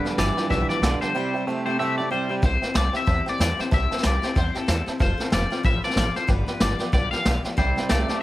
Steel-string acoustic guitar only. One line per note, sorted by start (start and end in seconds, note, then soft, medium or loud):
0.05 0.18 F3 soft
0.05 0.19 B3 soft
0.05 0.19 F4 soft
0.05 0.18 G4 medium
0.19 0.38 F3 medium
0.19 0.38 B3 medium
0.19 0.37 F4 medium
0.19 0.36 G4 medium
0.37 0.51 F3 soft
0.37 0.51 B3 medium
0.37 0.51 F4 medium
0.37 0.50 G4 medium
0.52 0.70 G2 medium
0.52 0.70 D3 medium
0.52 0.70 F3 medium
0.52 0.71 B3 medium
0.52 0.70 F4 medium
0.52 0.69 G4 medium
0.70 0.81 F3 soft
0.70 0.82 B3 soft
0.70 0.83 F4 medium
0.70 0.83 G4 medium
0.82 1.01 F3 medium
0.82 1.02 F4 medium
0.82 1.00 G4 medium
1.01 1.15 F3 soft
1.01 1.15 B3 soft
1.01 1.15 F4 soft
1.01 1.14 G4 soft
1.15 1.34 C3 medium
1.15 1.34 G3 medium
1.15 1.34 C4 medium
1.15 1.34 E4 medium
1.15 1.34 G4 medium
1.35 1.48 C4 soft
1.35 1.48 E4 soft
1.35 1.47 G4 soft
1.48 1.66 G3 medium
1.48 1.67 C4 medium
1.48 1.67 E4 medium
1.48 1.65 G4 medium
1.66 1.80 C4 soft
1.66 1.80 E4 soft
1.66 1.79 G4 medium
1.80 1.98 C3 medium
1.80 1.99 G3 medium
1.80 1.99 C4 medium
1.80 1.99 E4 medium
1.80 1.97 G4 medium
1.98 2.10 C4 soft
1.98 2.12 E4 medium
1.98 2.11 G4 medium
2.11 2.30 G3 medium
2.11 2.30 C4 medium
2.11 2.30 E4 medium
2.11 2.28 G4 medium
2.29 2.42 C4 soft
2.29 2.43 E4 soft
2.29 2.43 G4 medium
2.42 2.62 C3 medium
2.42 2.62 G3 medium
2.42 2.62 C4 medium
2.42 2.63 E4 medium
2.42 2.61 G4 medium
2.62 2.75 C4 soft
2.62 2.76 E4 medium
2.62 2.75 G4 medium
2.74 2.94 G3 medium
2.74 2.95 C4 medium
2.74 2.94 E4 medium
2.78 2.92 G4 medium
2.94 3.06 C4 soft
2.94 3.06 E4 medium
2.94 3.07 G4 medium
3.06 3.26 C3 medium
3.06 3.26 G3 medium
3.06 3.26 C4 medium
3.06 3.27 E4 medium
3.06 3.25 G4 medium
3.26 3.38 C4 soft
3.26 3.40 E4 soft
3.26 3.39 G4 medium
3.38 3.58 G3 medium
3.38 3.59 C4 medium
3.38 3.58 E4 medium
3.57 3.72 C4 soft
3.57 3.72 E4 soft
3.57 3.71 G4 medium
3.71 3.91 C3 medium
3.71 3.90 G3 medium
3.71 3.91 C4 medium
3.71 3.91 E4 medium
3.71 3.90 G4 medium
3.91 4.04 C4 soft
3.91 4.05 E4 medium
3.91 4.04 G4 soft
4.04 4.23 G3 medium
4.04 4.24 C4 medium
4.04 4.21 G4 medium
4.22 4.36 C4 soft
4.22 4.36 E4 medium
4.22 4.35 G4 medium
4.35 4.55 C3 medium
4.35 4.55 G3 medium
4.35 4.55 C4 medium
4.35 4.55 E4 medium
4.35 4.53 G4 medium
4.55 4.67 C4 soft
4.55 4.68 E4 soft
4.55 4.68 G4 medium
4.67 4.86 G3 medium
4.67 4.87 C4 medium
4.67 4.87 E4 medium
4.67 4.85 G4 medium
4.86 4.99 C4 soft
4.86 5.01 E4 soft
4.86 5.00 G4 medium
4.99 5.19 F3 medium
4.99 5.19 C4 medium
4.99 5.18 F4 medium
4.99 5.16 A4 medium
5.18 5.31 C4 soft
5.18 5.32 F4 soft
5.18 5.32 A4 medium
5.30 5.50 F3 medium
5.30 5.51 C4 medium
5.30 5.50 F4 medium
5.30 5.49 A4 medium
5.50 5.63 C4 soft
5.50 5.64 F4 medium
5.50 5.64 A4 medium
5.63 5.83 F3 medium
5.63 5.84 C4 medium
5.63 5.83 F4 medium
5.63 5.81 A4 medium
5.82 5.96 C4 soft
5.82 5.97 F4 medium
5.82 5.96 A4 medium
5.96 6.15 F3 medium
5.96 6.16 C4 medium
5.96 6.15 F4 medium
5.96 6.13 A4 medium
6.15 6.28 C4 soft
6.15 6.28 F4 soft
6.15 6.28 A4 soft
6.27 6.47 G2 medium
6.27 6.47 D3 medium
6.27 6.48 F3 medium
6.27 6.48 B3 medium
6.27 6.46 F4 medium
6.27 6.45 G4 medium
6.46 6.59 F3 soft
6.46 6.60 B3 soft
6.46 6.61 F4 medium
6.46 6.60 G4 medium
6.60 6.80 F3 medium
6.60 6.80 B3 medium
6.60 6.78 F4 medium
6.60 6.77 G4 medium
6.79 6.92 F3 soft
6.79 6.93 B3 medium
6.79 6.93 F4 medium
6.79 6.92 G4 medium
6.92 7.12 G2 medium
6.92 7.12 D3 medium
6.92 7.12 F3 medium
6.92 7.13 B3 medium
6.92 7.11 F4 medium
6.92 7.10 G4 medium
7.12 7.22 F3 soft
7.12 7.24 B3 soft
7.12 7.25 F4 medium
7.12 7.25 G4 medium
7.24 7.44 F3 medium
7.24 7.44 B3 medium
7.24 7.43 F4 medium
7.24 7.41 G4 medium
7.43 7.56 F3 soft
7.43 7.57 B3 soft
7.43 7.57 F4 soft
7.43 7.57 G4 soft
7.57 7.76 C3 medium
7.57 7.76 G3 medium
7.57 7.77 C4 medium
7.57 7.77 E4 medium
7.57 7.75 G4 medium
7.76 7.89 C4 soft
7.76 7.90 E4 medium
7.76 7.89 G4 medium
7.89 8.09 G3 medium
7.89 8.09 C4 medium
7.89 8.09 E4 medium
7.89 8.07 G4 medium
8.08 8.22 C4 soft
8.08 8.22 E4 medium
8.08 8.22 G4 medium